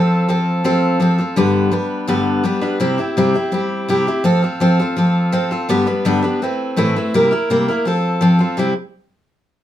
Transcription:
steel-string acoustic guitar
Already playing: F3 C4 F4 A4
0.29 F3 C4 F4 A4
0.64 F3 C4 F4 A4
1.00 F3 C4 F4 A4
1.18 C4 F4 A4
1.36 G2 D3 G3 B3 D4 B4
1.71 G3 B3 D4 B4
2.08 G2 D3 G3 B3 D4 B4
2.44 G3 B3 D4 B4
2.61 G3 B3 D4 B4
2.80 C3 G3 C4 E4 G4
2.98 C4 E4 G4
3.17 C3 G3 C4 E4 G4
3.34 C4 E4 G4
3.52 G3 C4 E4 G4
3.88 C3 G3 C4 E4 G4
4.07 C4 E4 G4
4.24 F3 C4 F4 A4
4.42 C4 F4 A4
4.60 F3 C4 F4 A4
4.80 C4 F4 A4
4.97 F3 C4 F4 A4
5.32 F3 C4 F4 A4
5.51 C4 F4 A4
5.69 G2 D3 G3 B3 D4 B4
5.86 G3 B3 D4 B4
6.05 G2 D3 G3 B3 D4 B4
6.22 G3 B3 D4 B4
6.42 A3 C4 E4 B4
6.77 A2 E3 A3 C4 E4 B4
6.96 A3 C4 E4 B4
7.14 C3 G3 A#3 E4 A#4
7.31 A#3 E4 A#4
7.50 C3 G3 A#3 E4 A#4
7.68 A#3 E4 A#4
7.85 F3 C4 F4 A4
8.21 F3 C4 F4 A4
8.39 C4 F4 A4
8.57 C3 G3 C4 E4 G4

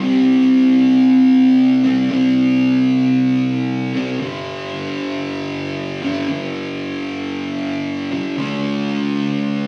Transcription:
distorted electric guitar
0.00 C3 G3 C4
1.84 C3 G3 C4
2.10 C3 G3 C4
3.93 C3 G3 C4
4.18 G2 D3 G3
6.02 G2 D3 G3
6.28 G2 D3 G3
8.11 G2 D3 G3
8.37 D3 A3 D4

